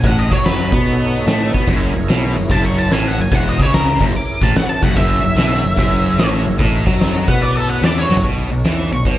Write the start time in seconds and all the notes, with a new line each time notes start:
Already playing: D#4 F#4 A4 C#5
0.04 A1 A2 F#5, kick, open hi-hat
0.19 D#5
0.31 F#2 F#3 C#5, kick, open hi-hat
0.45 B4, snare, open hi-hat
0.72 B2 B3, kick, open hi-hat
0.86 open hi-hat
1.14 open hi-hat
1.26 A2 A3, snare, open hi-hat
1.54 B2 B3, kick, open hi-hat
1.67 F#1 F#2 E4 G#4 A#4 C#5, kick, open hi-hat
1.95 F#1 F#2, open hi-hat
2.09 B1 B2, snare, open hi-hat
2.36 F#1 F#2, open hi-hat
2.50 F#1 F#2 A5, kick, open hi-hat
2.64 C#6
2.78 A5, open hi-hat
2.90 A1 A2 G#5, snare, open hi-hat
3.07 F#5
3.18 F#1 F#2 G#5, open hi-hat
3.31 E1 E2 F#5, kick, open hi-hat
3.49 D#5
3.59 C#2 C#3 C#5, kick, open hi-hat
3.73 A#4, snare, open hi-hat
4.00 F#1 F#2, kick, snare, open hi-hat
4.14 D6, open hi-hat
4.41 A1 A2 A5, kick, open hi-hat
4.54 F#5, muted fingered electric bass stroke, muted distorted electric guitar stroke, snare, open hi-hat
4.69 A5
4.82 F#1 F#2 F#5, kick, open hi-hat
4.96 F#1 F#2 G#4 A#4 C#5 E5, kick, open hi-hat
5.10 E5
5.24 F#1 F#2, open hi-hat
5.36 B1 B2, snare, open hi-hat
5.64 F#1 F#2, open hi-hat
5.76 F#1 F#2, kick, open hi-hat
6.05 open hi-hat
6.18 A1 A2, snare, open hi-hat
6.46 F#1 F#2, open hi-hat
6.58 A1 A2 D#4 F#4 A4 C#5, kick, open hi-hat
6.87 F#2 F#3, kick, open hi-hat
7.00 snare, open hi-hat
7.28 B2 B3 F#5, kick, open hi-hat
7.41 E4 G#4 A#4 C#5 D5, open hi-hat
7.57 A4
7.69 F#5, open hi-hat
7.82 E2 E3 D5, snare, open hi-hat
7.93 A3 B3
7.98 C4 D4 C#5
8.04 E4 F4
8.10 F#2 F#3 G4 A4, snare
8.15 B4 C5, floor tom
8.21 B1 B2 E4 G4 A#4 D5, kick, open hi-hat
8.37 D#4 F#4 A4 C#5
8.51 B1 B2, open hi-hat
8.64 E2 E3, snare, open hi-hat
8.92 B1 B2 C#6, open hi-hat
9.05 B1 B2, kick, open hi-hat